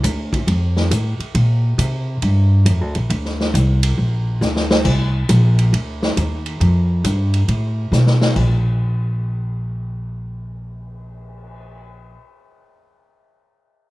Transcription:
0.03 D2, kick, hi-hat pedal, ride
0.33 kick, ride
0.47 F2, kick, ride
0.77 snare
0.91 A2, kick, hi-hat pedal, ride
1.19 muted upright bass stroke, ride
1.35 A#2, kick, ride
1.78 C3, kick, hi-hat pedal, ride
2.22 G2, kick, ride
2.65 F2, kick, hi-hat pedal, ride
2.81 D2
2.95 A#1, ride
3.10 D2, kick, ride
3.25 snare
3.40 snare
3.54 C2, kick, hi-hat pedal, ride
3.83 ride
3.98 A#1, kick
4.41 D2, snare, hi-hat pedal
4.56 snare
4.71 snare
4.85 C2, kick, crash
5.29 A#1, kick, hi-hat pedal, ride
5.59 ride
5.73 D2, kick, ride
6.03 snare
6.17 D#2, kick, hi-hat pedal, ride
6.46 ride
6.60 F2, kick, ride
7.04 G2, kick, hi-hat pedal, ride
7.34 ride
7.48 A2, kick, ride
7.92 B2, snare, hi-hat pedal
8.07 snare
8.21 snare
8.36 A#1, kick, crash
8.65 cymbal swell

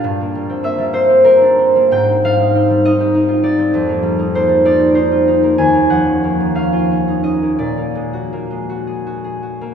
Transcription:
Already playing: A#3 D4 F4 A#4 F5 G5 A5 A#5
0.04 G2
0.21 A#3
0.35 G3
0.50 C4
0.63 A#3 E5
0.79 G3
0.93 C4 C5
1.09 G4
1.24 C4 A#4
1.41 D4
1.59 C4
1.76 A#3
1.91 G#2 G5
2.09 C4
2.24 G3 F5
2.39 D#4
2.55 C4
2.70 G3
2.85 D#4 D#5
3.00 G4
3.14 D#4
3.28 F4
3.43 D#4 D5
3.59 C4
3.74 F2
3.89 A#3
4.03 G3
4.19 D#4
4.35 A#3 C5
4.49 G3
4.65 D#4 D5
4.79 G4
4.94 D#4 C5
5.11 F4
5.28 D#4
5.43 A#3
5.58 D#2 G#5
5.74 A#3
5.90 F3 F#5
6.07 C#4
6.24 A#3
6.40 F3
6.55 C#4 F5
6.73 F4
6.91 C#4
7.08 D#4
7.23 C#4 D#5
7.42 A#3
7.59 A#2 D5
7.77 A#3
7.95 G#3
8.13 F#4
8.33 A#3
8.51 G#3
8.70 F#4
8.87 G#4
9.07 F#4
9.24 G#4
9.43 F#4
9.61 A#3

